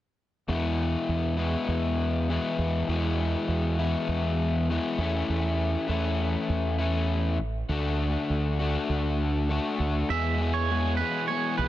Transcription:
0.48 overdriven electric guitar E2 B2 E3 G#3 B3 E4, fingered electric bass E2
1.09 fingered electric bass E2
1.37 overdriven electric guitar E2 B2 E3 G#3 B3 E4
1.68 fingered electric bass E2
2.29 overdriven electric guitar E2 B2 E3 G#3 B3 E4
2.58 fingered electric bass E2
2.88 fingered electric bass E2, overdriven electric guitar E2 B2 E3 G#3 B3 E4
3.48 fingered electric bass E2
3.79 overdriven electric guitar E2 B2 E3 G#3 B3 E4
4.08 fingered electric bass E2
4.69 overdriven electric guitar E2 B2 E3 G#3 B3 E4
4.98 fingered electric bass E2, overdriven electric guitar E3 A3 C#4 E4
5.29 fingered electric bass E2
5.88 fingered electric bass E2, overdriven electric guitar E3 A3 C#4 E4
6.49 fingered electric bass E2
6.79 overdriven electric guitar E3 A3 C#4 E4
7.39 fingered electric bass A1
7.69 fingered electric bass D2, overdriven electric guitar D3 A3 D4 F#4
8.30 fingered electric bass D2
8.59 overdriven electric guitar D3 A3 D4 F#4
8.89 fingered electric bass D2
9.49 overdriven electric guitar D3 A3 D4 F#4
9.79 fingered electric bass D2
10.09 fingered electric bass E2, overdriven electric guitar E2 B2 E3 G#3 B3 G#4, clean electric guitar E5
10.40 overdriven electric guitar E2 B2 E3 G#3 B3 G#4
10.54 clean electric guitar C#5
10.70 overdriven electric guitar E2 B2 E3 G#3 B3 G#4
10.97 overdriven electric guitar E2 B2 E3 G#3 B3, clean electric guitar B4
11.01 overdriven electric guitar G#4
11.28 overdriven electric guitar E2 B2 E3 G#3 B3, clean electric guitar C#5
11.32 overdriven electric guitar G#4
11.58 fingered electric bass B1, overdriven electric guitar E2 B2 E3 G#3 B3 G#4, clean electric guitar B4

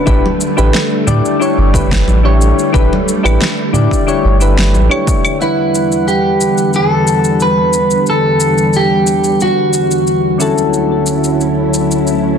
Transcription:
Already playing: string machine D3 A3
0.06 sub bass A1, string machine G3, synth keys D4 E4 G4 B4, kick, shaker
0.26 high conga
0.41 shaker
0.57 sub bass A1, synth keys D4 E4 G4 B4, shaker
0.74 snare, shaker
1.07 sub bass A2, synth keys D4 E4 G4 D5, high conga, low conga, shaker
1.25 shaker
1.40 synth keys D4 E4 G4 C#5, shaker
1.58 sub bass G1
1.73 synth keys D4 E4 G4 B4, kick, shaker
1.91 kick, snare, shaker
2.07 sub bass A1, high conga, shaker
2.23 synth keys D4 E4 G4 C#5
2.41 shaker
2.59 shaker
2.73 sub bass A1, synth keys D4 E4 G4 B4, kick, shaker
2.93 high conga
3.09 shaker
3.23 sub bass A1, synth keys D4 E4 G4 B4, claves, shaker
3.41 snare, shaker
3.73 sub bass A2, synth keys D4 E4 G4 D5, low conga, shaker
3.91 kick, shaker
4.07 synth keys D4 E4 G4 C#5, shaker
4.24 sub bass G1
4.40 synth keys D4 E4 G4 B4, shaker
4.58 snare, shaker
4.74 sub bass A1, high conga, shaker
4.90 synth keys D4 E4 G4 C#5, claves
5.07 kick, shaker
5.25 claves, shaker
5.39 string machine E2 D3 G3 F#5, synth keys E3 G3 D4 B4 F#5, clean electric guitar E4, shaker
5.75 shaker
5.92 shaker
6.08 clean electric guitar G4, shaker
6.41 shaker
6.58 shaker
6.73 clean electric guitar A4, shaker
7.07 shaker
7.24 shaker
7.40 clean electric guitar B4, shaker
7.73 shaker
7.91 shaker
8.06 clean electric guitar A4, shaker
8.40 shaker
8.58 shaker
8.73 clean electric guitar G4, shaker
9.07 shaker
9.24 shaker
9.40 clean electric guitar F#4, shaker
9.73 shaker
9.91 shaker
10.07 shaker
10.38 string machine D2 F#3 C#4 E4, synth keys D3 C#4 E4 F#4 A4, shaker
10.58 shaker
10.74 shaker
11.06 shaker
11.24 shaker
11.41 shaker
11.74 shaker
11.91 shaker
12.07 shaker

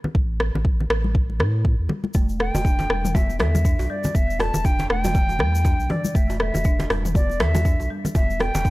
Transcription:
0.04 muted conga, low conga
0.15 sub bass A1, kick
0.40 cross-stick, muted conga
0.54 sub bass A1, low conga
0.65 kick
0.80 muted conga, low conga
0.89 sub bass A1, cross-stick
1.04 high conga
1.15 kick
1.30 muted conga
1.39 sub bass A2, cross-stick, low conga
1.64 kick, muted conga
1.79 sub bass E2
1.89 high conga, low conga
2.04 muted conga, high conga
2.14 sub bass E1, marimba A3, kick, djembe tone, high conga, shaker
2.29 shaker
2.40 marimba A4, flute G5, cross-stick, muted conga
2.54 sub bass E1, djembe tone, low conga, shaker
2.65 marimba D4, kick, shaker
2.79 muted conga, djembe slap, djembe tone, low conga, shaker
2.89 sub bass E1, marimba G3, cross-stick
3.05 mid tom, high conga, shaker
3.15 marimba B3, flute E5, kick, high conga, djembe tone, shaker
3.29 muted conga, shaker
3.39 sub bass E2, marimba A4, flute E5, cross-stick, mid tom, djembe slap, djembe tone, high conga
3.55 high conga, low conga, shaker
3.65 marimba D4, kick, muted conga, shaker
3.79 sub bass B1, djembe tone, shaker
3.85 flute E5
3.90 marimba G3, flute D5
4.04 muted conga, djembe tone, low conga, shaker
4.15 sub bass E1, marimba B3, flute E5, kick, shaker
4.30 shaker
4.39 marimba A4, flute A5, cross-stick, muted conga, djembe tone
4.54 sub bass E1, low conga, shaker
4.64 marimba D4, flute G5, kick, djembe tone, shaker
4.79 muted conga, djembe slap, low conga, shaker
4.89 sub bass E1, marimba A3, flute G5, cross-stick
5.04 mid tom, high conga, djembe tone, shaker
5.15 marimba E3, kick, shaker
5.29 muted conga, djembe tone, shaker
5.39 sub bass E2, marimba G3, cross-stick, low conga
5.55 shaker
5.64 marimba D4, kick, muted conga, djembe tone, shaker
5.79 sub bass B1, shaker
5.89 marimba E3, flute D5, mid tom, djembe tone, high conga, low conga
6.05 muted conga, high conga, shaker
6.14 sub bass E1, marimba A3, flute E5, kick, high conga, shaker
6.30 djembe tone, shaker
6.40 marimba A4, flute E5, cross-stick, muted conga
6.54 sub bass E1, djembe tone, low conga, shaker
6.64 marimba D4, kick, shaker
6.79 djembe slap, muted conga, low conga, shaker
6.90 sub bass E1, marimba G3, cross-stick, djembe tone
7.05 mid tom, high conga, shaker
7.14 marimba B3, flute D5, kick, high conga, djembe tone, shaker
7.30 muted conga, shaker
7.40 sub bass E2, marimba A4, flute E5, cross-stick, mid tom, djembe slap, high conga
7.55 djembe tone, high conga, low conga, shaker
7.65 marimba D4, kick, muted conga, shaker
7.79 sub bass B1, djembe tone, shaker
7.90 marimba G3
8.05 muted conga, low conga, shaker
8.15 sub bass E1, marimba B3, flute E5, kick, high conga, djembe tone, shaker
8.30 high conga, shaker
8.39 marimba A4, flute G5, cross-stick, muted conga, djembe tone
8.54 sub bass E1, djembe slap, low conga, shaker
8.65 marimba D4, kick, shaker

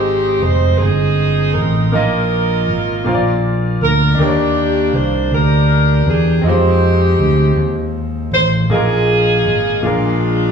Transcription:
Already playing: fingered electric bass G#1, grand piano G#2 G#3 C4 D#4 C5 G5, saxophone section C4 D#4 G4
0.42 fingered electric bass F1, saxophone section C5
0.78 fingered electric bass G1, saxophone section C4 D#4 G#4
1.54 fingered electric bass A1, saxophone section A#4
1.92 fingered electric bass A#1, grand piano A#2 A#3 D#4 F4 A#4 D#5, saxophone section D#4 F4 A#4
2.68 fingered electric bass G#1
3.04 fingered electric bass A#1, grand piano A#2 A#3 F4 A#4
3.08 grand piano C5
3.15 grand piano D5
3.81 fingered electric bass D2, saxophone section A#4
4.15 fingered electric bass D#2, grand piano A#3 D4
4.19 grand piano D#3 A#4 G5, saxophone section A#3 D4 G4
4.23 grand piano C#5
4.30 grand piano D5
4.93 fingered electric bass C2, saxophone section C5
5.31 fingered electric bass D2, saxophone section D4 G4 A#4
6.06 fingered electric bass E2, saxophone section G#4
6.41 fingered electric bass F2, grand piano C4 D#4
6.46 grand piano G#3 F4 C5, saxophone section C4 D#4 G4
7.19 fingered electric bass D2
7.56 fingered electric bass D#2
8.31 fingered electric bass A1, saxophone section C5
8.70 fingered electric bass A#1, grand piano A#2 A#3 D#4 F4 G#4, saxophone section D#4 F4 G#4
8.74 grand piano A#4
9.45 fingered electric bass G#1
9.82 fingered electric bass A#1, grand piano A#2 A#3 D4 F4 G#4, saxophone section G#3 D4 F4
9.87 grand piano A#4

